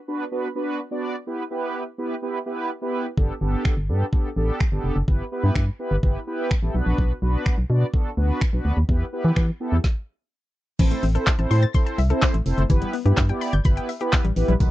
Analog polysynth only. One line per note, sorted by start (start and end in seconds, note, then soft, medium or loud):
0.08 0.24 B3 medium
0.08 0.24 D4 medium
0.08 0.24 F#4 medium
0.08 0.24 B4 loud
0.32 0.48 B3 medium
0.32 0.48 D4 medium
0.32 0.48 F#4 medium
0.32 0.48 B4 medium
0.55 0.80 B3 medium
0.55 0.80 D4 medium
0.55 0.80 F#4 medium
0.55 0.80 B4 loud
0.91 1.16 B3 medium
0.91 1.16 D4 medium
0.91 1.16 F#4 medium
0.91 1.16 D5 medium
1.27 1.43 B3 medium
1.27 1.43 E4 medium
1.27 1.43 G4 medium
1.27 1.44 B4 loud
1.51 1.83 B3 medium
1.51 1.84 E4 medium
1.51 1.84 G4 medium
1.51 1.84 B4 medium
1.98 2.15 B3 medium
1.98 2.15 E4 medium
1.98 2.15 G4 medium
1.98 2.15 B4 loud
2.22 2.38 B3 medium
2.22 2.39 E4 medium
2.22 2.39 G4 medium
2.22 2.39 B4 medium
2.46 2.70 B3 medium
2.46 2.71 E4 medium
2.46 2.71 G4 medium
2.46 2.71 B4 loud
2.82 3.06 B3 medium
2.82 3.06 E4 medium
2.82 3.06 G4 medium
2.82 3.06 B4 medium
3.17 3.34 B3 medium
3.17 3.34 D4 medium
3.17 3.34 G4 medium
3.17 3.34 A4 medium
3.41 3.74 B3 medium
3.41 3.74 D4 medium
3.41 3.74 G4 medium
3.41 3.74 A4 medium
3.89 4.05 B3 medium
3.89 4.05 D4 medium
3.89 4.05 G4 medium
3.89 4.05 A4 loud
4.13 4.29 B3 medium
4.13 4.29 D4 medium
4.13 4.29 G4 medium
4.13 4.29 A4 medium
4.36 4.61 B3 medium
4.36 4.61 D4 medium
4.36 4.61 G4 medium
4.36 4.61 A4 loud
4.72 4.97 B3 medium
4.72 4.97 D4 medium
4.72 4.97 G4 medium
4.72 4.97 A4 loud
5.08 5.24 B3 medium
5.08 5.24 E4 medium
5.08 5.24 G4 medium
5.08 5.25 B4 loud
5.32 5.64 B3 medium
5.32 5.64 E4 medium
5.32 5.65 G4 medium
5.32 5.65 B4 loud
5.79 5.96 B3 medium
5.79 5.96 E4 medium
5.79 5.96 G4 medium
5.79 5.96 B4 loud
6.03 6.19 B3 medium
6.03 6.20 E4 medium
6.03 6.20 G4 medium
6.03 6.20 B4 medium
6.27 6.51 B3 medium
6.27 6.52 E4 medium
6.27 6.52 G4 medium
6.27 6.52 B4 loud
6.62 6.73 B3 medium
6.62 6.75 E4 medium
6.62 6.75 G4 medium
6.62 6.75 A4 medium
6.74 7.13 B3 medium
6.74 7.13 D4 medium
6.74 7.13 F#4 medium
6.74 7.13 B4 loud
7.22 7.55 B3 medium
7.22 7.55 D4 medium
7.22 7.55 F#4 medium
7.22 7.55 B4 medium
7.70 7.86 B3 medium
7.70 7.86 D4 medium
7.70 7.86 F#4 medium
7.70 7.86 D5 loud
7.93 8.10 B3 medium
7.93 8.10 D4 medium
7.93 8.10 F#4 medium
7.93 8.10 A4 medium
8.17 8.42 B3 medium
8.17 8.42 D4 medium
8.17 8.42 F#4 medium
8.17 8.42 B4 loud
8.53 8.78 B3 medium
8.53 8.78 D4 medium
8.53 8.78 F#4 medium
8.53 8.78 B4 loud
8.89 9.05 B3 medium
8.89 9.05 E4 medium
8.89 9.05 G4 medium
8.89 9.05 B4 medium
9.12 9.45 B3 medium
9.12 9.45 E4 medium
9.12 9.46 G4 medium
9.12 9.46 B4 loud
9.60 9.77 B3 medium
9.60 9.77 E4 medium
9.60 9.77 G4 medium
9.60 9.77 A4 loud
10.79 11.04 C4 medium
10.79 11.04 E4 medium
10.79 11.04 A4 medium
10.79 11.04 C5 loud
11.15 11.31 C4 medium
11.15 11.31 E4 medium
11.15 11.31 A4 medium
11.15 11.32 C5 loud
11.39 11.63 C4 medium
11.39 11.63 E4 medium
11.39 11.63 A4 medium
11.39 11.64 C5 medium
11.74 11.99 C4 medium
11.74 11.99 E4 medium
11.74 11.99 A4 medium
11.74 11.99 C5 loud
12.10 12.35 C4 medium
12.10 12.35 E4 medium
12.10 12.35 A4 medium
12.10 12.35 C5 loud
12.46 12.62 C4 medium
12.46 12.62 E4 medium
12.46 12.62 A4 medium
12.46 12.62 C5 loud
12.70 12.94 B3 medium
12.70 12.94 E4 medium
12.70 12.94 G4 medium
12.70 12.95 B4 loud
13.05 13.22 B3 medium
13.05 13.22 E4 medium
13.05 13.22 G4 medium
13.05 13.22 B4 loud
13.29 13.54 B3 medium
13.29 13.54 E4 medium
13.29 13.54 G4 medium
13.29 13.54 D5 medium
13.65 13.90 B3 medium
13.65 13.90 E4 medium
13.65 13.90 G4 medium
13.65 13.90 B4 medium
14.01 14.25 B3 medium
14.01 14.25 E4 medium
14.01 14.25 G4 medium
14.01 14.26 B4 loud
14.36 14.53 B3 medium
14.36 14.53 E4 medium
14.36 14.53 G4 medium
14.36 14.53 B4 medium
14.60 14.71 B3 medium
14.60 14.71 D#4 medium
14.60 14.71 F#4 medium
14.60 14.71 B4 medium